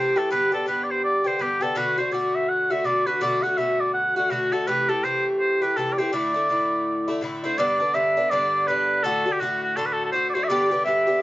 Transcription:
Already playing: C3 E3 A3 G4 C5
0.16 E3 A3 G4 A4
0.31 G2 D3 B3 G4 B4
0.52 D3 B3 G4 A4
0.66 G2 D3 B3 G4 B4
0.84 D5
0.91 C5
1.04 D5
1.24 D3 B3 G4 C5
1.39 G2 D3 B3 G4
1.61 D3 B3 G4 A4
1.75 B2 D3 A3 F#4 B4
1.98 D3 A3 F#4 C5
2.12 B2 D3 A3 F#4 D5
2.35 E5
2.49 F#5
2.70 D3 A3 F#4 E5
2.84 B2 D3 A3 F#4 D5
3.07 D3 A3 F#4 B4
3.21 B2 D3 A3 F#4 D5
3.43 D3 A3 F#4 F#5
3.57 B2 D3 A3 F#4 E5
3.80 D5
3.94 F#5
4.16 D3 A3 F#4 F#5
4.30 B2 D3 A3 F#4
4.52 D3 A3 F#4 A4
4.67 C3 E3 A3 G4 B4
4.89 E3 A3 G4 A4
5.04 C3 E3 A3 G4 C5
5.40 C5
5.62 E3 A3 G4 B4
5.76 C3 E3 A3 G4 A4
5.93 D5
5.98 E3 A3 G4 C5
6.13 A2 D3 A3 E4 D5
6.34 D3 A3 E4
6.49 A2 D3 A3 E4
7.08 D3 A3 E4
7.21 A2 D3 A3 E4
7.44 D3 A3 E4 C5
7.58 G2 D3 B3 D4 D5
7.80 D3 B3 D4
7.94 G2 D3 B3 D4 E5
8.17 D3 B3 D4
8.30 G2 D3 B3 D4 D5
8.67 G2 D3 B3 D4 B4
9.03 A2 D3 A3 F#4 A4
9.26 D3 A3 F#4
9.32 G4
9.40 A2 D3 A3 F#4
9.63 F#4
9.77 A2 D3 A3 F#4 A4
9.86 B4
9.92 A4
10.05 A4
10.12 A2 D3 A3 F#4 C5
10.29 D5
10.34 D3 A3 F#4 C5
10.44 E5
10.48 G2 D3 B3 G4 D5
10.71 D3 B3 G4
10.85 G2 D3 B3 G4 E5
11.07 D3 B3 G4

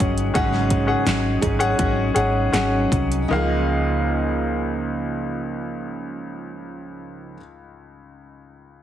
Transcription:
Already playing: F#3 C#4 D#4 G#4 F#5
0.00 G1, kick, closed hi-hat
0.18 closed hi-hat
0.34 G#1 G#2 C#3 F#3 C#4 D#4 G#4 F#5, kick, closed hi-hat
0.53 snare
0.70 kick, closed hi-hat
0.87 C#4 G#4 F#5
1.05 G#1 F#3 C#4 D#4 G#4, snare, clap, closed hi-hat
1.41 G#1 F#3 C#4 D#4 G#4, kick, closed hi-hat
1.59 C#4 G#4 F#5, closed hi-hat
1.79 G#1 F#3 C#4 D#4 G#4, kick, closed hi-hat
2.14 G#1 F#3 C#4 D#4 G#4 F#5, closed hi-hat
2.52 G#1 F#3 C#4 D#4 G#4 F#5, snare, clap, closed hi-hat
2.92 C2, kick, closed hi-hat
3.12 closed hi-hat
3.28 C#2 C#3 F3 D#4 A#4
3.32 A#3 D#4 G#4 F5

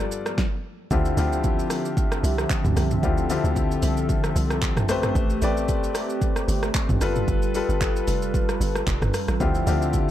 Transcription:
Already playing: G2 F3 G3 B3 F4 A4 B4 D5
0.12 shaker
0.26 cross-stick, shaker
0.38 kick, snare
0.91 D2 D3 F3 C4 E4 F4 G4 E5, kick, shaker
1.05 shaker
1.17 D2 D3 C4 E4 F4 G4, open hi-hat, shaker
1.32 shaker
1.44 kick, shaker
1.59 shaker
1.70 cross-stick, open hi-hat, shaker
1.85 shaker
1.97 kick, shaker
2.12 cross-stick, shaker
2.23 C2, open hi-hat, shaker
2.38 cross-stick, shaker
2.50 kick, clap, shaker
2.65 D2, mid tom, shaker
2.76 C2, cross-stick, open hi-hat, shaker
2.91 mid tom, shaker
3.03 D2 D3 C4 E4 F4 G4 A4, kick, shaker
3.18 shaker
3.30 D3 C4 E4 F4 G4, open hi-hat, shaker
3.44 D2, shaker
3.56 kick, shaker
3.72 shaker
3.83 C2, open hi-hat, shaker
3.97 shaker
4.09 kick, shaker
4.24 cross-stick, shaker
4.36 C2, open hi-hat, shaker
4.50 cross-stick, shaker
4.62 kick, clap, shaker
4.77 cross-stick, mid tom, shaker
4.89 A1 A3 C4 G4 B4 C5, cross-stick, open hi-hat, shaker
5.03 cross-stick, mid tom, shaker
5.15 A1, kick, shaker
5.30 shaker
5.42 A1 A3 G4 B4 D5, open hi-hat, shaker
5.57 shaker
5.68 kick, shaker
5.84 shaker
5.95 cross-stick, open hi-hat, shaker
6.10 shaker
6.22 kick, shaker
6.36 cross-stick, shaker
6.48 G1, open hi-hat, shaker
6.63 cross-stick, shaker
6.75 kick, clap, shaker
6.89 A1, mid tom, shaker
7.01 G1 G3 F4 A4 B4, cross-stick, open hi-hat, shaker
7.16 mid tom, shaker
7.28 G1, kick, shaker
7.42 shaker
7.55 G3 F4 A4 B4, open hi-hat, shaker
7.69 G1, shaker
7.81 kick, clap, shaker
7.96 shaker
8.08 F1, open hi-hat, shaker
8.22 shaker
8.34 kick, shaker
8.49 cross-stick, shaker
8.60 G1, open hi-hat, shaker
8.75 cross-stick, shaker
8.87 F1, kick, clap, shaker
9.02 G1, cross-stick, mid tom, shaker
9.14 cross-stick, open hi-hat, shaker
9.28 A1, cross-stick, shaker
9.40 D2 D3 F3 C4 E4 F4 G4 E5, kick, shaker
9.55 shaker
9.67 D2 D3 C4 E4 F4 G4, open hi-hat, shaker
9.82 shaker
9.93 kick, shaker

